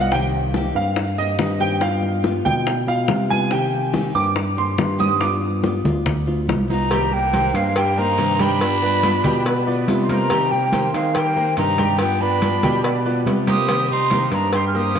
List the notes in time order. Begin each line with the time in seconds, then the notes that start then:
Already playing: C2 B3 F4
0.01 F#5
0.12 C3 D#3 A#3 C4 G4 G5, high bongo
0.33 high conga
0.54 C3 D#3 A#3 C4 G4, high bongo, high conga
0.75 G2 A#3 C4 G4 F5, high conga
0.96 muted nylon-string guitar stroke, high bongo, high conga
1.18 A#3 C4 G4 D#5, high conga
1.39 G2 D#3 A#3 C4 G4, high bongo, low bongo, high conga
1.60 D#3 A#3 C4 G4 G5
1.81 G3 B3 F4 F5, high bongo, high conga
2.03 high bongo, high conga
2.24 G3 B3 F4, high bongo, high conga
2.45 B2 B3 F4 G5, high conga, low conga
2.67 muted nylon-string guitar stroke, high bongo, high conga
2.88 B2 B3 F4 F5, high bongo, high conga
3.08 C3 G3 B3 F4, high bongo, low bongo, high conga
3.30 B3 F4 G#5, high bongo, high conga
3.51 C3 D#3 A#3 C4 G4 G5, high bongo, high conga
3.74 high conga
3.94 C3 D#3 A#3 C4 G4, high bongo, high conga
4.15 G2 A#3 C4 G4 D6, high conga
4.36 muted nylon-string guitar stroke, high bongo, high conga
4.57 A#3 C4 G4 C6, high conga
4.78 G2 D#3 A#3 C4 G4, high bongo, low bongo, high conga
4.99 D#3 A#3 C4 G4 D#6, high conga
5.20 G3 B3 F4 D6, high bongo, high conga
5.42 high bongo, high conga
5.64 G3 B3 F4, high bongo, high conga
5.84 D2 B3 F4, high conga, low conga
6.05 muted nylon-string guitar stroke, high bongo, high conga, low conga
6.27 D2 B3 F4, high bongo, high conga
6.48 C2 G3 B3 F4, high bongo, low bongo, high conga
6.69 B3 D#4 F4 A#5, high bongo, high conga
6.91 C3 D#3 G3 A#3 C4 G4 G5, cowbell, high conga
7.11 A#3 C4 G4 G5, high conga
7.33 C3 D#3 A#3 C4 G4 A#4 C5, cowbell, high conga
7.54 G2 G#3 A#3 C4 G4 F5, cowbell, high conga
7.76 G3 A#3 G4 G5, muted nylon-string guitar stroke, cowbell, high conga
7.97 A#3 C4 D#4 G4 A#4 C5 A#5, high conga
8.18 G2 C3 D#3 A#3 C4 G4, cowbell, high conga
8.39 G3 D4 G4 G5 B5, cowbell, high conga
8.61 G3 B3 F4, cowbell, high conga
8.82 B3 F4 B4 D5, high conga
9.03 G3 B3 F4, cowbell, high conga
9.24 B2 G3 B3 F4 G4 G5, cowbell, high conga, low conga
9.46 B3 B4 D5, muted nylon-string guitar stroke, cowbell, high conga
9.67 B3 F4 B4 D5, high conga
9.88 C3 G3 B3 F4, cowbell, high conga
10.03 D#4 C6
10.09 A#3 D#4 A#4 C5 A#5, cowbell, high conga
10.30 C3 D#3 G3 A#3 C4 G4 G5, cowbell, high conga
10.50 A#3 C4 G4 G5, high conga
10.72 C3 D#3 A#3 C4 G4 A#4 C5, cowbell, high conga
10.93 D#3 G#3 A#3 C4 G4 F5, cowbell, high conga
11.14 G3 A#3 G4 G5, muted nylon-string guitar stroke, cowbell, high conga
11.36 A#3 C4 G4 A#4 C5, high conga
11.56 G2 C3 D#3 A#3 C4 D#4 G4 A#5, cowbell, high conga
11.78 G3 G4 G5, cowbell, high conga
11.99 G3 B3 F4 G5, cowbell, high conga
12.21 B3 D4 F4 B4 D5 B5, high conga
12.42 G3 B3 F4, cowbell, high conga
12.63 B2 G3 B3 F4 G4 G5, cowbell, high conga, low conga
12.84 B3 B4 D5, muted nylon-string guitar stroke, cowbell
13.05 B3 F4 B4 D5, high conga
13.26 C3 G3 B3 F4, cowbell, high conga
13.47 A#3 G4 A#4 C5 D#6, cowbell, high conga
13.69 C3 D#3 G3 A#3 C4 G4 G5, cowbell, high conga
13.91 A#3 C4 D#4 G4 C6, high conga
14.11 C3 D#3 A#3 C4 G4 A#4 C5, cowbell, high conga
14.32 G2 A#3 C4 D4 G4 A#5, cowbell, high conga
14.53 G3 D#4 G4 G5 C6, muted nylon-string guitar stroke, cowbell, high conga
14.67 G#4 F6
14.74 A#3 C4 G4 A#4 C5 D#6, high conga
14.95 G2 C3 D#3, cowbell, high conga